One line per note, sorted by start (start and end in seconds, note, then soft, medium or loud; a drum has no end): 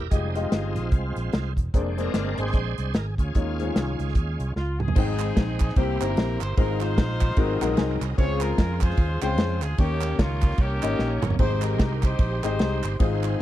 0.00 0.12 A#4 medium
0.10 0.46 F1 loud
0.10 0.41 G3 soft
0.10 0.25 G#3 medium
0.10 0.35 G#3 soft
0.10 0.36 C4 medium
0.10 0.89 D#4 medium
0.10 0.25 F4 medium
0.10 0.25 G4 medium
0.10 0.35 G#4 medium
0.10 0.25 D#5 medium
0.10 kick medium
0.10 closed hi-hat medium
0.34 0.82 G#3 medium
0.34 1.53 G#3 medium
0.34 1.53 C4 medium
0.34 1.52 F4 medium
0.34 0.82 F4 medium
0.34 0.82 G4 medium
0.34 0.82 D#5 medium
0.34 snare soft
0.34 closed hi-hat medium
0.52 0.77 G1 medium
0.52 snare loud
0.52 closed hi-hat medium
0.75 0.92 A#1 medium
0.75 closed hi-hat medium
0.92 1.12 C2 medium
0.92 kick loud
0.92 closed hi-hat medium
1.16 1.30 A#1 medium
1.16 closed hi-hat medium
1.33 1.53 C2 medium
1.33 snare loud
1.33 closed hi-hat medium
1.57 1.71 E1 medium
1.57 kick medium
1.57 closed hi-hat medium
1.74 2.08 F1 loud
1.74 2.77 G#3 medium
1.74 1.88 A#3 medium
1.74 2.77 C4 soft
1.74 1.88 D4 medium
1.74 1.98 D4 medium
1.74 1.88 G#4 medium
1.74 1.88 C5 medium
1.74 kick medium
1.74 closed hi-hat medium
1.98 2.44 A#3 medium
1.98 2.44 D4 medium
1.98 2.75 D4 medium
1.98 2.44 G#4 medium
1.98 2.41 A#4 loud
1.98 2.44 C5 medium
1.98 snare soft
1.98 closed hi-hat medium
2.14 2.34 G1 medium
2.14 snare loud
2.14 closed hi-hat medium
2.38 2.52 G#1 medium
2.38 3.15 G#4 medium
2.38 2.97 C5 loud
2.38 closed hi-hat medium
2.47 snare soft
2.53 2.74 A#1 medium
2.53 kick loud
2.53 closed hi-hat medium
2.78 2.92 C2 medium
2.78 2.93 G#3 soft
2.78 2.93 C4 soft
2.78 2.93 D4 medium
2.78 closed hi-hat medium
2.94 3.15 G#1 medium
2.94 3.06 A#4 medium
2.94 snare loud
2.94 closed hi-hat medium
3.18 3.32 D2 medium
3.18 3.99 C#4 medium
3.18 4.00 F4 medium
3.18 4.52 G#4 medium
3.18 kick medium
3.18 closed hi-hat medium
3.35 3.69 D#2 loud
3.35 3.95 D#3 medium
3.35 3.49 G#3 medium
3.35 3.49 D#4 medium
3.35 3.49 F4 medium
3.35 3.49 C#5 medium
3.35 kick medium
3.35 closed hi-hat medium
3.60 4.06 G#3 medium
3.60 4.06 D#4 medium
3.60 4.06 F4 medium
3.60 3.63 C5 medium
3.60 closed hi-hat medium
3.65 4.08 C#5 medium
3.75 3.96 C2 medium
3.75 snare loud
3.75 closed hi-hat medium
3.99 4.13 C#2 medium
3.99 4.53 G#3 soft
3.99 4.54 C#4 soft
3.99 4.54 F4 medium
3.99 closed hi-hat medium
4.08 snare soft
4.15 4.36 D#2 medium
4.15 kick loud
4.15 closed hi-hat medium
4.39 4.53 C2 medium
4.39 closed hi-hat medium
4.56 4.90 C#2 medium
4.56 4.78 F4 medium
4.56 snare medium
4.80 4.94 G#4 medium
4.80 mid tom medium
4.88 floor tom medium
4.95 5.31 G#1 loud
4.95 5.57 G#2 medium
4.95 5.74 G#3 medium
4.95 5.45 G#3 medium
4.95 5.75 C4 medium
4.95 5.73 C4 medium
4.95 5.45 C4 medium
4.95 5.75 D#4 medium
4.95 5.73 D#4 medium
4.95 5.45 D#4 medium
4.95 5.72 G#4 medium
4.95 5.75 C5 medium
4.95 5.45 C5 medium
4.95 5.75 G5 medium
4.95 5.45 G5 medium
4.95 kick loud
4.95 crash loud
5.19 snare soft
5.19 clap medium
5.19 ride medium
5.36 5.71 A#1 medium
5.36 kick medium
5.36 snare loud
5.36 ride medium
5.60 kick loud
5.60 clap loud
5.60 ride medium
5.69 snare soft
5.76 5.97 C2 medium
5.76 6.37 C3 medium
5.76 6.55 A#3 medium
5.76 6.53 A#3 medium
5.76 5.96 A#3 medium
5.76 6.55 C4 medium
5.76 5.96 C4 medium
5.76 5.82 D#4 soft
5.76 5.96 E4 medium
5.76 6.01 E4 medium
5.76 6.55 G4 medium
5.76 5.96 G4 medium
5.76 6.01 G4 loud
5.76 6.55 C5 medium
5.76 5.96 C5 medium
5.76 kick loud
5.76 ride medium
5.81 6.58 E4 medium
6.00 6.15 G1 medium
6.00 6.35 A#3 medium
6.00 6.35 C4 medium
6.00 6.05 D#4 medium
6.00 6.54 E4 medium
6.00 6.35 G4 medium
6.00 6.54 G4 medium
6.00 6.41 A#4 loud
6.00 6.35 C5 medium
6.00 clap loud
6.00 ride medium
6.06 6.38 E4 medium
6.16 6.37 A#1 medium
6.16 snare loud
6.16 ride medium
6.41 6.55 G1 medium
6.41 6.56 C5 loud
6.41 clap loud
6.41 ride medium
6.56 6.98 G#1 loud
6.56 7.17 G#2 medium
6.56 6.63 G3 soft
6.56 7.06 G#3 medium
6.56 7.36 C4 medium
6.56 7.06 C4 medium
6.56 7.36 D#4 medium
6.56 6.81 D#4 medium
6.56 7.06 D#4 medium
6.56 7.36 F4 medium
6.56 6.81 F4 medium
6.56 7.06 F4 medium
6.56 6.81 A#4 loud
6.56 7.36 C5 medium
6.56 7.06 C5 medium
6.56 kick loud
6.56 ride medium
6.62 7.37 G#3 medium
6.81 7.98 D#4 medium
6.81 7.98 F4 medium
6.81 7.98 C5 loud
6.81 snare soft
6.81 clap loud
6.81 ride medium
6.98 7.32 A#1 medium
6.98 kick medium
6.98 snare loud
6.98 ride medium
7.21 kick medium
7.21 clap loud
7.21 ride medium
7.30 snare soft
7.36 7.57 G#1 loud
7.36 7.98 G#2 medium
7.36 8.16 F#3 medium
7.36 7.57 G#3 medium
7.36 8.17 G#3 medium
7.36 7.57 C4 medium
7.36 8.17 C4 medium
7.36 7.57 D#4 medium
7.36 8.17 D#4 medium
7.36 7.57 F#4 medium
7.36 7.57 A#4 loud
7.36 8.17 A#4 medium
7.36 kick loud
7.36 ride medium
7.61 7.75 A#1 medium
7.61 7.96 F#3 medium
7.61 7.96 G#3 medium
7.61 7.96 C4 medium
7.61 7.96 D#4 medium
7.61 7.96 A#4 loud
7.61 7.77 F#5 medium
7.61 clap loud
7.61 ride medium
7.77 7.98 C2 medium
7.77 8.15 G#5 medium
7.77 snare loud
7.77 ride medium
8.01 8.15 C2 loud
8.01 clap medium
8.01 ride medium
8.18 8.52 C#2 loud
8.18 8.78 C#3 medium
8.18 9.76 C#3 medium
8.18 8.67 G#3 medium
8.18 9.76 G#3 medium
8.18 8.67 C4 medium
8.18 8.67 C#4 medium
8.18 8.41 F4 medium
8.18 8.67 F4 medium
8.18 9.76 F4 medium
8.18 8.81 G#4 medium
8.18 8.24 A#4 medium
8.18 8.67 C5 medium
8.18 8.40 C#5 loud
8.18 kick loud
8.18 ride medium
8.24 9.78 C5 medium
8.41 8.81 F4 medium
8.41 8.82 A#4 loud
8.41 snare soft
8.41 clap loud
8.41 ride medium
8.58 8.92 F2 loud
8.58 kick medium
8.58 snare loud
8.58 ride medium
8.81 9.21 F4 medium
8.81 9.21 G#4 medium
8.81 9.21 C5 loud
8.81 kick medium
8.81 clap loud
8.81 ride medium
8.90 snare soft
8.97 9.18 D#2 medium
8.97 kick loud
8.97 ride medium
9.22 9.38 C#2 medium
9.22 9.57 G#3 medium
9.22 9.57 C4 medium
9.22 9.57 C#4 medium
9.22 9.75 F4 medium
9.22 9.57 F4 medium
9.22 9.61 G#4 medium
9.22 9.59 C5 loud
9.22 9.57 G5 medium
9.22 clap loud
9.22 ride medium
9.38 9.62 F2 medium
9.38 snare loud
9.38 ride medium
9.62 9.76 D2 medium
9.62 9.79 G#4 medium
9.62 clap medium
9.62 ride medium
9.77 10.13 D#2 loud
9.77 10.39 D#3 medium
9.77 11.36 A#3 medium
9.77 10.27 A#3 medium
9.77 10.18 A#3 medium
9.77 11.36 C#4 medium
9.77 10.27 C#4 medium
9.77 10.19 C#4 medium
9.77 11.36 D#4 medium
9.77 10.27 D#4 medium
9.77 11.36 G4 medium
9.77 10.27 G4 medium
9.77 10.16 G4 medium
9.77 11.35 C#5 medium
9.77 10.27 C#5 medium
9.77 kick loud
9.77 ride medium
10.01 snare soft
10.01 clap loud
10.01 ride medium
10.19 10.53 C#2 medium
10.19 10.59 A#3 medium
10.19 10.59 C#4 medium
10.19 10.59 F4 medium
10.19 kick medium
10.19 snare loud
10.19 ride medium
10.42 kick loud
10.42 clap loud
10.42 ride medium
10.51 snare soft
10.58 10.79 C2 medium
10.58 11.36 A#3 medium
10.58 11.36 C#4 medium
10.58 11.24 G4 loud
10.58 kick loud
10.58 ride medium
10.83 10.97 G#1 medium
10.83 11.17 A#3 medium
10.83 11.17 C#4 medium
10.83 11.17 D#4 medium
10.83 11.17 G4 medium
10.83 11.17 D#5 medium
10.83 clap loud
10.83 ride medium
10.99 11.19 A#1 medium
10.99 snare medium
11.23 11.37 G1 medium
11.23 clap medium
11.23 mid tom medium
11.30 floor tom medium
11.39 11.79 G#1 loud
11.39 11.99 G#2 medium
11.39 11.88 G#3 medium
11.39 12.97 G#3 medium
11.39 11.88 C4 medium
11.39 12.97 C4 medium
11.39 11.62 D#4 medium
11.39 11.88 D#4 medium
11.39 12.97 D#4 medium
11.39 11.62 G4 medium
11.39 11.88 G4 medium
11.39 12.97 G4 medium
11.39 11.88 C5 medium
11.39 11.61 C5 medium
11.39 12.97 C5 medium
11.39 kick loud
11.39 crash medium
11.62 12.02 D#4 medium
11.62 12.03 G4 medium
11.62 12.01 A#4 medium
11.62 snare soft
11.62 clap loud
11.62 ride medium
11.79 12.14 C2 medium
11.79 kick medium
11.79 snare loud
11.79 ride medium
12.03 12.42 D#4 medium
12.03 12.42 G4 medium
12.03 12.42 C5 loud
12.03 kick medium
12.03 clap loud
12.03 ride medium
12.19 12.39 A#1 medium
12.19 kick loud
12.19 ride medium
12.43 12.57 G#1 medium
12.43 12.78 G#3 medium
12.43 12.78 C4 medium
12.43 12.96 D#4 medium
12.43 12.78 D#4 medium
12.43 12.96 G4 medium
12.43 12.78 G4 medium
12.43 12.96 C5 medium
12.43 12.78 D#5 medium
12.43 clap loud
12.43 ride medium
12.59 12.80 C2 medium
12.59 snare loud
12.59 ride medium
12.83 12.98 G1 medium
12.83 clap medium
12.83 ride medium
12.99 13.34 G#1 loud
12.99 13.42 G#2 medium
12.99 13.42 G#3 medium
12.99 13.42 C4 medium
12.99 13.42 D#4 medium
12.99 13.42 F4 medium
12.99 13.42 G#4 medium
12.99 13.42 C5 medium
12.99 kick loud
12.99 ride medium
13.23 clap loud
13.23 ride medium